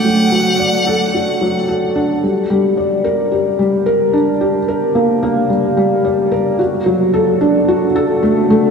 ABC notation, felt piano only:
X:1
M:4/4
L:1/8
Q:1/4=110
K:Gm
V:1 name="Felt piano"
^F, F, d A ^F F, A D | G, G, d B G G, B D | G B B, B, G, G, d B | ^F ^F, A D F A A, A, |]